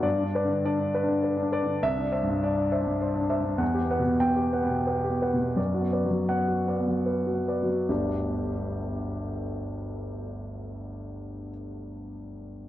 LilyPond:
<<
  \new Staff \with { instrumentName = "Grand piano" } { \time 3/4 \key g \major \tempo 4 = 84 << { d''8 r2 r8 | e''8 r2 r8 | r4 g''8 r4. | r4 fis''8 r4. |
<g,, d, g b d' g'>2.~ | <g,, d, g b d' g'>2. | } \\ { r16 d'16 <b' d''>16 d16 d''16 d'16 <b' d''>16 d16 b'16 d'16 <b' d''>16 d16 | r16 d'16 <c'' e''>16 g,16 d''16 d'16 <c'' e''>16 g,16 c''16 d'16 <c'' e''>16 g,16 | fis''16 g'16 <b' fis''>16 b,8 g'16 <b' fis''>16 b,16 b'16 g'16 <b' fis''>16 b,16 | d''16 fis'16 <b' d''>16 fis8 fis'16 <b' d''>16 fis16 b'16 fis'16 <b' d''>16 fis16 |
r2. | r2. | } >> }
  \new Staff \with { instrumentName = "Grand piano" } { \time 3/4 \key g \major \tuplet 3/2 { g,8 d'8 d8 d'4 d'8~ d'8 d'8 d8 } | \tuplet 3/2 { c,8 d'8 g,8 d'4 d'8~ d'8 d'8 g,8 } | \tuplet 3/2 { e,8 b8 b,8 b4 b8~ b8 b8 b,8 } | \tuplet 3/2 { fis,8 b8 fis8 b4 b8~ b8 b8 fis8 } |
r2. | r2. | }
>>